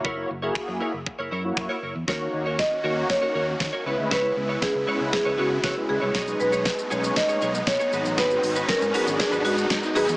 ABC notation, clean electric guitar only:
X:1
M:4/4
L:1/16
Q:1/4=118
K:D#phr
V:1 name="Clean electric guitar"
[EAc]2 z [EAc] z2 [EAc] z2 [EAc] [EAc] z2 [EAc] [EAc] z | [FAc]2 z [FAc] z2 [FAc] z2 [FAc] [FAc] z2 [FAc] [EBc] z | [EBc]2 z [EBc] z2 [EBc] z2 [EBc] [EBc] z [EBc] z2 [EBc] | [DGc]2 z [DGc] z2 [DGc] z2 [DGc] [DGc] z2 [DGc] [DFB] z |
[DFB]2 z [DFB] z2 [DFB] z2 [DFB] [DFB] z3 [DFB] z |]